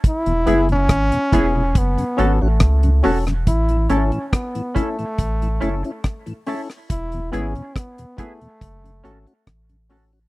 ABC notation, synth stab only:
X:1
M:4/4
L:1/16
Q:1/4=70
K:A
V:1 name="Synth stab"
z2 [B,EG] z3 [B,EG] [EG] z2 [CFA] z3 [CFA] z | z2 [CEA] z3 [CEA] z3 [CEA] z3 [CEA] z | z2 [B,EG] z3 [B,EG] z3 [CFA] z3 [CFA] z |]